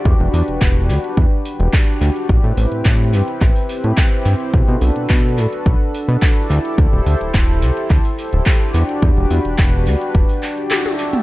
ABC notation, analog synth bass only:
X:1
M:4/4
L:1/16
Q:1/4=107
K:Em
V:1 name="Analog synth bass" clef=bass
E,, E,,, E,, E,,, E,,,2 D,, z E,, z2 E,,, z2 D,, z | A,,, A,, A,,, A,, A,,2 G,, z A,,, z2 A,, z2 G,, z | B,,, B,, B,,, B,, B,,2 A,, z B,,, z2 B,, z2 D,, z | D,, D,,, D,, D,,, D,,,2 C,, z D,, z2 D,,, z2 E,, z |
E,, E,,, E,, E,,, E,,,2 D,, z E,,, z6 z |]